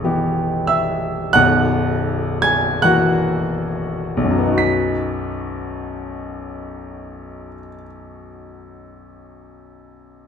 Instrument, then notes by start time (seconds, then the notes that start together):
grand piano
Already playing: B0 B1 D#5 D#6
0.04 E3 B3 G4
0.67 E5 E6
1.33 B0 B1 F#5 F#6
2.42 G#5 G#6
2.82 E3 A#3 F#4 F#5 F#6
4.17 B1
4.24 F#2
4.31 F#3
4.38 B3
4.45 D#4
4.52 F#4
4.58 B6